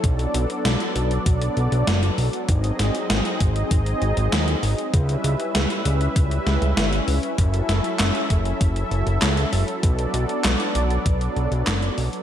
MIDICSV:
0, 0, Header, 1, 4, 480
1, 0, Start_track
1, 0, Key_signature, 2, "minor"
1, 0, Tempo, 612245
1, 30, Time_signature, 4, 2, 24, 8
1, 9587, End_track
2, 0, Start_track
2, 0, Title_t, "Analog synth pad"
2, 0, Program_c, 0, 89
2, 0, Note_on_c, 0, 54, 84
2, 0, Note_on_c, 0, 69, 75
2, 29, Note_on_c, 0, 59, 78
2, 29, Note_on_c, 0, 62, 79
2, 30, Note_on_c, 0, 74, 90
2, 1918, Note_off_c, 0, 69, 0
2, 1930, Note_off_c, 0, 59, 0
2, 1930, Note_off_c, 0, 62, 0
2, 1930, Note_off_c, 0, 74, 0
2, 1950, Note_on_c, 0, 63, 77
2, 1950, Note_on_c, 0, 68, 76
2, 1950, Note_on_c, 0, 75, 93
2, 1951, Note_on_c, 0, 60, 78
2, 3838, Note_off_c, 0, 54, 0
2, 3850, Note_off_c, 0, 63, 0
2, 3851, Note_off_c, 0, 60, 0
2, 3851, Note_off_c, 0, 68, 0
2, 3851, Note_off_c, 0, 75, 0
2, 3869, Note_on_c, 0, 55, 83
2, 3869, Note_on_c, 0, 76, 93
2, 3870, Note_on_c, 0, 61, 76
2, 3870, Note_on_c, 0, 64, 77
2, 3870, Note_on_c, 0, 71, 80
2, 5770, Note_off_c, 0, 55, 0
2, 5770, Note_off_c, 0, 71, 0
2, 5770, Note_off_c, 0, 76, 0
2, 5789, Note_on_c, 0, 69, 76
2, 5789, Note_on_c, 0, 76, 90
2, 5790, Note_on_c, 0, 54, 83
2, 7678, Note_off_c, 0, 61, 0
2, 7678, Note_off_c, 0, 64, 0
2, 7690, Note_off_c, 0, 76, 0
2, 7710, Note_on_c, 0, 59, 80
2, 7710, Note_on_c, 0, 62, 78
2, 7710, Note_on_c, 0, 74, 96
2, 9587, Note_off_c, 0, 54, 0
2, 9587, Note_off_c, 0, 59, 0
2, 9587, Note_off_c, 0, 62, 0
2, 9587, Note_off_c, 0, 69, 0
2, 9587, Note_off_c, 0, 74, 0
2, 9587, End_track
3, 0, Start_track
3, 0, Title_t, "Analog synth bass"
3, 0, Program_c, 1, 38
3, 29, Note_on_c, 1, 35, 99
3, 210, Note_off_c, 1, 35, 0
3, 269, Note_on_c, 1, 35, 85
3, 360, Note_off_c, 1, 35, 0
3, 510, Note_on_c, 1, 35, 95
3, 600, Note_off_c, 1, 35, 0
3, 750, Note_on_c, 1, 35, 102
3, 931, Note_off_c, 1, 35, 0
3, 990, Note_on_c, 1, 35, 81
3, 1171, Note_off_c, 1, 35, 0
3, 1230, Note_on_c, 1, 35, 83
3, 1320, Note_off_c, 1, 35, 0
3, 1350, Note_on_c, 1, 35, 102
3, 1440, Note_off_c, 1, 35, 0
3, 1470, Note_on_c, 1, 30, 87
3, 1651, Note_off_c, 1, 30, 0
3, 1709, Note_on_c, 1, 35, 80
3, 1800, Note_off_c, 1, 35, 0
3, 1949, Note_on_c, 1, 32, 101
3, 2131, Note_off_c, 1, 32, 0
3, 2189, Note_on_c, 1, 32, 86
3, 2280, Note_off_c, 1, 32, 0
3, 2429, Note_on_c, 1, 32, 96
3, 2520, Note_off_c, 1, 32, 0
3, 2670, Note_on_c, 1, 32, 105
3, 2851, Note_off_c, 1, 32, 0
3, 2910, Note_on_c, 1, 32, 83
3, 3091, Note_off_c, 1, 32, 0
3, 3149, Note_on_c, 1, 32, 81
3, 3240, Note_off_c, 1, 32, 0
3, 3269, Note_on_c, 1, 32, 104
3, 3360, Note_off_c, 1, 32, 0
3, 3390, Note_on_c, 1, 39, 89
3, 3571, Note_off_c, 1, 39, 0
3, 3630, Note_on_c, 1, 32, 83
3, 3720, Note_off_c, 1, 32, 0
3, 3870, Note_on_c, 1, 37, 98
3, 4051, Note_off_c, 1, 37, 0
3, 4110, Note_on_c, 1, 37, 83
3, 4200, Note_off_c, 1, 37, 0
3, 4350, Note_on_c, 1, 37, 92
3, 4440, Note_off_c, 1, 37, 0
3, 4590, Note_on_c, 1, 37, 102
3, 4771, Note_off_c, 1, 37, 0
3, 4829, Note_on_c, 1, 37, 83
3, 5010, Note_off_c, 1, 37, 0
3, 5069, Note_on_c, 1, 37, 81
3, 5160, Note_off_c, 1, 37, 0
3, 5189, Note_on_c, 1, 37, 101
3, 5280, Note_off_c, 1, 37, 0
3, 5309, Note_on_c, 1, 31, 88
3, 5490, Note_off_c, 1, 31, 0
3, 5550, Note_on_c, 1, 37, 83
3, 5640, Note_off_c, 1, 37, 0
3, 5789, Note_on_c, 1, 30, 102
3, 5970, Note_off_c, 1, 30, 0
3, 6030, Note_on_c, 1, 30, 87
3, 6120, Note_off_c, 1, 30, 0
3, 6270, Note_on_c, 1, 30, 96
3, 6360, Note_off_c, 1, 30, 0
3, 6509, Note_on_c, 1, 30, 103
3, 6690, Note_off_c, 1, 30, 0
3, 6749, Note_on_c, 1, 30, 82
3, 6930, Note_off_c, 1, 30, 0
3, 6989, Note_on_c, 1, 30, 80
3, 7080, Note_off_c, 1, 30, 0
3, 7109, Note_on_c, 1, 30, 101
3, 7200, Note_off_c, 1, 30, 0
3, 7229, Note_on_c, 1, 37, 88
3, 7410, Note_off_c, 1, 37, 0
3, 7469, Note_on_c, 1, 30, 85
3, 7560, Note_off_c, 1, 30, 0
3, 7709, Note_on_c, 1, 35, 101
3, 7890, Note_off_c, 1, 35, 0
3, 7949, Note_on_c, 1, 35, 85
3, 8040, Note_off_c, 1, 35, 0
3, 8189, Note_on_c, 1, 35, 96
3, 8280, Note_off_c, 1, 35, 0
3, 8429, Note_on_c, 1, 35, 99
3, 8610, Note_off_c, 1, 35, 0
3, 8669, Note_on_c, 1, 35, 85
3, 8850, Note_off_c, 1, 35, 0
3, 8909, Note_on_c, 1, 35, 84
3, 9000, Note_off_c, 1, 35, 0
3, 9029, Note_on_c, 1, 35, 104
3, 9120, Note_off_c, 1, 35, 0
3, 9148, Note_on_c, 1, 30, 88
3, 9330, Note_off_c, 1, 30, 0
3, 9389, Note_on_c, 1, 35, 85
3, 9480, Note_off_c, 1, 35, 0
3, 9587, End_track
4, 0, Start_track
4, 0, Title_t, "Drums"
4, 29, Note_on_c, 9, 36, 124
4, 30, Note_on_c, 9, 42, 98
4, 108, Note_off_c, 9, 36, 0
4, 108, Note_off_c, 9, 42, 0
4, 150, Note_on_c, 9, 42, 43
4, 229, Note_off_c, 9, 42, 0
4, 270, Note_on_c, 9, 42, 72
4, 348, Note_off_c, 9, 42, 0
4, 390, Note_on_c, 9, 42, 41
4, 469, Note_off_c, 9, 42, 0
4, 510, Note_on_c, 9, 38, 127
4, 510, Note_on_c, 9, 42, 100
4, 588, Note_off_c, 9, 38, 0
4, 588, Note_off_c, 9, 42, 0
4, 630, Note_on_c, 9, 42, 41
4, 708, Note_off_c, 9, 42, 0
4, 750, Note_on_c, 9, 42, 71
4, 828, Note_off_c, 9, 42, 0
4, 870, Note_on_c, 9, 42, 41
4, 948, Note_off_c, 9, 42, 0
4, 989, Note_on_c, 9, 36, 123
4, 989, Note_on_c, 9, 42, 97
4, 1068, Note_off_c, 9, 36, 0
4, 1068, Note_off_c, 9, 42, 0
4, 1110, Note_on_c, 9, 42, 44
4, 1188, Note_off_c, 9, 42, 0
4, 1230, Note_on_c, 9, 42, 37
4, 1308, Note_off_c, 9, 42, 0
4, 1350, Note_on_c, 9, 42, 42
4, 1428, Note_off_c, 9, 42, 0
4, 1469, Note_on_c, 9, 38, 122
4, 1469, Note_on_c, 9, 42, 95
4, 1548, Note_off_c, 9, 38, 0
4, 1548, Note_off_c, 9, 42, 0
4, 1590, Note_on_c, 9, 42, 42
4, 1668, Note_off_c, 9, 42, 0
4, 1710, Note_on_c, 9, 46, 75
4, 1788, Note_off_c, 9, 46, 0
4, 1829, Note_on_c, 9, 42, 41
4, 1908, Note_off_c, 9, 42, 0
4, 1949, Note_on_c, 9, 42, 97
4, 1950, Note_on_c, 9, 36, 125
4, 2027, Note_off_c, 9, 42, 0
4, 2028, Note_off_c, 9, 36, 0
4, 2069, Note_on_c, 9, 42, 42
4, 2147, Note_off_c, 9, 42, 0
4, 2190, Note_on_c, 9, 38, 66
4, 2190, Note_on_c, 9, 42, 69
4, 2268, Note_off_c, 9, 38, 0
4, 2268, Note_off_c, 9, 42, 0
4, 2310, Note_on_c, 9, 42, 42
4, 2388, Note_off_c, 9, 42, 0
4, 2429, Note_on_c, 9, 38, 127
4, 2429, Note_on_c, 9, 42, 101
4, 2508, Note_off_c, 9, 38, 0
4, 2508, Note_off_c, 9, 42, 0
4, 2549, Note_on_c, 9, 42, 40
4, 2627, Note_off_c, 9, 42, 0
4, 2669, Note_on_c, 9, 42, 68
4, 2670, Note_on_c, 9, 36, 112
4, 2748, Note_off_c, 9, 36, 0
4, 2748, Note_off_c, 9, 42, 0
4, 2789, Note_on_c, 9, 42, 41
4, 2868, Note_off_c, 9, 42, 0
4, 2909, Note_on_c, 9, 42, 97
4, 2910, Note_on_c, 9, 36, 123
4, 2988, Note_off_c, 9, 36, 0
4, 2988, Note_off_c, 9, 42, 0
4, 3029, Note_on_c, 9, 42, 40
4, 3108, Note_off_c, 9, 42, 0
4, 3149, Note_on_c, 9, 42, 36
4, 3228, Note_off_c, 9, 42, 0
4, 3269, Note_on_c, 9, 42, 43
4, 3348, Note_off_c, 9, 42, 0
4, 3390, Note_on_c, 9, 38, 124
4, 3390, Note_on_c, 9, 42, 94
4, 3468, Note_off_c, 9, 38, 0
4, 3468, Note_off_c, 9, 42, 0
4, 3510, Note_on_c, 9, 42, 40
4, 3588, Note_off_c, 9, 42, 0
4, 3630, Note_on_c, 9, 46, 75
4, 3709, Note_off_c, 9, 46, 0
4, 3751, Note_on_c, 9, 42, 40
4, 3829, Note_off_c, 9, 42, 0
4, 3870, Note_on_c, 9, 36, 121
4, 3870, Note_on_c, 9, 42, 93
4, 3948, Note_off_c, 9, 36, 0
4, 3948, Note_off_c, 9, 42, 0
4, 3991, Note_on_c, 9, 42, 41
4, 4069, Note_off_c, 9, 42, 0
4, 4110, Note_on_c, 9, 42, 65
4, 4189, Note_off_c, 9, 42, 0
4, 4230, Note_on_c, 9, 42, 40
4, 4309, Note_off_c, 9, 42, 0
4, 4350, Note_on_c, 9, 38, 123
4, 4350, Note_on_c, 9, 42, 96
4, 4428, Note_off_c, 9, 38, 0
4, 4428, Note_off_c, 9, 42, 0
4, 4470, Note_on_c, 9, 42, 40
4, 4549, Note_off_c, 9, 42, 0
4, 4589, Note_on_c, 9, 42, 66
4, 4668, Note_off_c, 9, 42, 0
4, 4710, Note_on_c, 9, 42, 40
4, 4788, Note_off_c, 9, 42, 0
4, 4829, Note_on_c, 9, 36, 120
4, 4830, Note_on_c, 9, 42, 94
4, 4908, Note_off_c, 9, 36, 0
4, 4908, Note_off_c, 9, 42, 0
4, 4950, Note_on_c, 9, 42, 40
4, 5028, Note_off_c, 9, 42, 0
4, 5069, Note_on_c, 9, 38, 63
4, 5069, Note_on_c, 9, 42, 36
4, 5148, Note_off_c, 9, 38, 0
4, 5148, Note_off_c, 9, 42, 0
4, 5189, Note_on_c, 9, 42, 39
4, 5268, Note_off_c, 9, 42, 0
4, 5309, Note_on_c, 9, 38, 123
4, 5309, Note_on_c, 9, 42, 89
4, 5388, Note_off_c, 9, 38, 0
4, 5388, Note_off_c, 9, 42, 0
4, 5430, Note_on_c, 9, 42, 40
4, 5508, Note_off_c, 9, 42, 0
4, 5549, Note_on_c, 9, 46, 77
4, 5627, Note_off_c, 9, 46, 0
4, 5669, Note_on_c, 9, 42, 39
4, 5747, Note_off_c, 9, 42, 0
4, 5789, Note_on_c, 9, 36, 117
4, 5789, Note_on_c, 9, 42, 89
4, 5867, Note_off_c, 9, 36, 0
4, 5867, Note_off_c, 9, 42, 0
4, 5909, Note_on_c, 9, 42, 38
4, 5987, Note_off_c, 9, 42, 0
4, 6029, Note_on_c, 9, 38, 65
4, 6029, Note_on_c, 9, 42, 62
4, 6107, Note_off_c, 9, 38, 0
4, 6107, Note_off_c, 9, 42, 0
4, 6149, Note_on_c, 9, 42, 39
4, 6227, Note_off_c, 9, 42, 0
4, 6268, Note_on_c, 9, 38, 125
4, 6268, Note_on_c, 9, 39, 92
4, 6268, Note_on_c, 9, 42, 90
4, 6347, Note_off_c, 9, 38, 0
4, 6347, Note_off_c, 9, 39, 0
4, 6347, Note_off_c, 9, 42, 0
4, 6388, Note_on_c, 9, 42, 38
4, 6467, Note_off_c, 9, 42, 0
4, 6509, Note_on_c, 9, 36, 104
4, 6509, Note_on_c, 9, 42, 64
4, 6587, Note_off_c, 9, 36, 0
4, 6587, Note_off_c, 9, 42, 0
4, 6628, Note_on_c, 9, 42, 38
4, 6707, Note_off_c, 9, 42, 0
4, 6749, Note_on_c, 9, 36, 120
4, 6749, Note_on_c, 9, 42, 87
4, 6827, Note_off_c, 9, 36, 0
4, 6827, Note_off_c, 9, 42, 0
4, 6869, Note_on_c, 9, 42, 38
4, 6947, Note_off_c, 9, 42, 0
4, 6988, Note_on_c, 9, 42, 35
4, 7067, Note_off_c, 9, 42, 0
4, 7108, Note_on_c, 9, 42, 39
4, 7187, Note_off_c, 9, 42, 0
4, 7228, Note_on_c, 9, 38, 116
4, 7228, Note_on_c, 9, 39, 89
4, 7228, Note_on_c, 9, 42, 91
4, 7306, Note_off_c, 9, 38, 0
4, 7306, Note_off_c, 9, 39, 0
4, 7306, Note_off_c, 9, 42, 0
4, 7349, Note_on_c, 9, 42, 38
4, 7427, Note_off_c, 9, 42, 0
4, 7469, Note_on_c, 9, 46, 80
4, 7547, Note_off_c, 9, 46, 0
4, 7589, Note_on_c, 9, 42, 37
4, 7667, Note_off_c, 9, 42, 0
4, 7709, Note_on_c, 9, 36, 118
4, 7709, Note_on_c, 9, 42, 89
4, 7787, Note_off_c, 9, 36, 0
4, 7787, Note_off_c, 9, 42, 0
4, 7829, Note_on_c, 9, 42, 39
4, 7907, Note_off_c, 9, 42, 0
4, 7949, Note_on_c, 9, 42, 62
4, 8027, Note_off_c, 9, 42, 0
4, 8069, Note_on_c, 9, 42, 38
4, 8148, Note_off_c, 9, 42, 0
4, 8189, Note_on_c, 9, 38, 119
4, 8189, Note_on_c, 9, 39, 97
4, 8189, Note_on_c, 9, 42, 91
4, 8267, Note_off_c, 9, 38, 0
4, 8267, Note_off_c, 9, 39, 0
4, 8267, Note_off_c, 9, 42, 0
4, 8309, Note_on_c, 9, 42, 37
4, 8387, Note_off_c, 9, 42, 0
4, 8429, Note_on_c, 9, 42, 63
4, 8507, Note_off_c, 9, 42, 0
4, 8549, Note_on_c, 9, 42, 38
4, 8628, Note_off_c, 9, 42, 0
4, 8669, Note_on_c, 9, 36, 117
4, 8669, Note_on_c, 9, 42, 91
4, 8747, Note_off_c, 9, 36, 0
4, 8748, Note_off_c, 9, 42, 0
4, 8789, Note_on_c, 9, 42, 39
4, 8868, Note_off_c, 9, 42, 0
4, 8910, Note_on_c, 9, 42, 35
4, 8988, Note_off_c, 9, 42, 0
4, 9030, Note_on_c, 9, 42, 38
4, 9108, Note_off_c, 9, 42, 0
4, 9150, Note_on_c, 9, 38, 117
4, 9150, Note_on_c, 9, 39, 97
4, 9150, Note_on_c, 9, 42, 88
4, 9228, Note_off_c, 9, 38, 0
4, 9228, Note_off_c, 9, 39, 0
4, 9228, Note_off_c, 9, 42, 0
4, 9270, Note_on_c, 9, 42, 38
4, 9349, Note_off_c, 9, 42, 0
4, 9390, Note_on_c, 9, 46, 82
4, 9468, Note_off_c, 9, 46, 0
4, 9510, Note_on_c, 9, 42, 38
4, 9587, Note_off_c, 9, 42, 0
4, 9587, End_track
0, 0, End_of_file